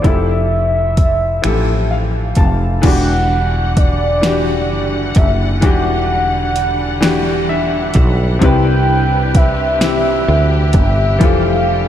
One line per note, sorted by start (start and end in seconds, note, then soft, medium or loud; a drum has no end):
0.02 1.40 F1 medium
0.02 0.98 F3 medium
0.02 0.99 E4 medium
0.02 1.00 G4 medium
0.02 kick loud
0.02 closed hi-hat medium
0.06 1.00 A4 medium
0.06 2.38 E5 loud
0.97 kick medium
0.97 closed hi-hat medium
1.42 2.33 A1 medium
1.42 2.39 E3 medium
1.42 2.38 F3 medium
1.42 2.39 G4 medium
1.42 finger snap loud
1.42 closed hi-hat medium
1.47 2.40 A4 medium
1.91 2.34 F5 medium
2.35 2.80 F1 medium
2.35 2.80 A5 medium
2.35 kick medium
2.35 closed hi-hat medium
2.82 4.71 E1 loud
2.82 8.38 D3 medium
2.82 3.77 E3 medium
2.82 8.38 G3 medium
2.82 3.78 D4 medium
2.82 11.88 D4 medium
2.82 3.79 F#4 medium
2.82 8.38 F#5 medium
2.82 3.73 F#5 loud
2.82 kick loud
2.82 closed hi-hat medium
2.82 crash medium
2.87 3.80 G4 medium
3.77 5.12 D5 loud
3.77 kick medium
3.77 closed hi-hat medium
4.21 5.17 E3 medium
4.21 5.17 D4 medium
4.21 5.18 F#4 medium
4.21 snare loud
4.21 closed hi-hat medium
4.26 5.19 G4 medium
4.71 5.13 F#1 medium
5.15 5.63 F#1 loud
5.15 5.31 E5 medium
5.15 kick medium
5.15 closed hi-hat medium
5.61 7.91 E1 loud
5.61 6.56 E3 medium
5.61 6.57 D4 medium
5.61 6.58 F#4 medium
5.61 7.45 F#5 loud
5.61 kick loud
5.61 closed hi-hat medium
5.66 6.59 G4 medium
6.56 closed hi-hat medium
7.01 7.96 E3 medium
7.01 7.97 D4 medium
7.01 7.98 F#4 medium
7.01 snare loud
7.01 closed hi-hat medium
7.05 7.98 G4 medium
7.49 8.38 E5 medium
7.94 8.38 B1 loud
7.94 kick medium
7.94 closed hi-hat medium
8.39 10.24 C2 loud
8.39 9.35 C3 medium
8.39 11.18 C3 medium
8.39 9.36 C4 medium
8.39 9.37 E4 medium
8.39 11.88 G4 medium
8.39 11.18 B4 medium
8.39 kick loud
8.39 closed hi-hat medium
8.44 9.38 B4 medium
8.44 9.37 G5 loud
9.35 10.75 E5 loud
9.35 kick medium
9.35 closed hi-hat medium
9.79 10.75 C3 medium
9.79 10.75 C4 medium
9.79 10.76 E4 medium
9.79 snare loud
9.79 closed hi-hat medium
9.84 10.77 G4 medium
10.28 10.76 D2 medium
10.73 11.21 G1 medium
10.73 11.25 E5 medium
10.73 kick medium
10.73 closed hi-hat medium
11.19 11.88 F1 loud
11.19 11.88 E3 medium
11.19 11.88 F3 medium
11.19 11.88 G3 medium
11.19 11.88 A3 medium
11.19 11.88 G4 medium
11.19 kick loud
11.19 closed hi-hat medium
11.24 11.88 A4 medium
11.24 11.88 F5 medium